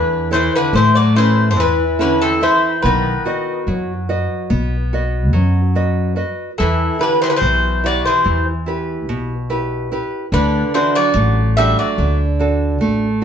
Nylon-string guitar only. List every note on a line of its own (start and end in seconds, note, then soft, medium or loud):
0.00 0.70 E3 medium
0.00 0.14 E4 soft
0.00 0.14 A4 soft
0.00 0.14 C#5 soft
0.31 0.98 E4 soft
0.31 0.99 A4 soft
0.31 0.99 C#5 soft
0.74 1.55 A3 medium
1.15 1.83 C#4 soft
1.15 1.83 E4 soft
1.15 1.83 A4 soft
1.56 2.38 E3 medium
1.99 2.66 C#4 medium
1.99 2.40 E4 soft
1.99 2.41 A4 soft
2.41 2.75 E4 soft
2.41 2.75 A4 soft
2.41 2.75 E5 soft
2.84 3.65 B3 medium
3.26 3.92 F#4 soft
3.26 3.93 B4 soft
3.26 3.93 D#5 medium
3.68 4.48 F#3 medium
4.09 4.76 F#4 soft
4.09 4.76 B4 soft
4.09 4.76 D#5 medium
4.50 5.31 B3 medium
4.93 5.59 F#4 soft
4.93 5.60 B4 soft
4.93 5.60 D#5 soft
5.33 6.14 F#3 medium
5.75 6.15 F#4 soft
5.75 6.15 B4 soft
5.75 6.16 D#5 soft
6.16 6.50 F#4 soft
6.16 6.50 B4 soft
6.16 6.50 D#5 medium
6.58 7.39 E3 medium
6.99 7.66 E4 medium
6.99 7.67 G4 soft
7.42 8.23 B2 medium
7.84 8.50 E4 soft
7.84 8.51 G4 soft
8.24 9.05 E3 medium
8.66 9.33 E4 soft
8.66 9.34 G4 soft
8.66 9.34 B4 medium
9.09 9.89 B2 medium
9.50 9.90 E4 soft
9.50 9.91 G4 soft
9.50 9.91 B4 soft
9.92 10.25 E4 soft
9.92 10.25 G4 soft
9.92 10.25 B4 soft
10.32 11.13 D3 medium
10.75 11.41 D4 soft
10.75 11.41 F#4 soft
10.75 11.41 A4 medium
11.16 11.96 A3 medium
11.57 12.23 D4 soft
11.57 12.23 F#4 soft
11.57 12.24 A4 medium
11.98 12.79 D3 medium
12.39 13.06 D4 soft
12.39 13.06 F#4 soft
12.39 13.06 A4 medium
12.81 13.24 A3 medium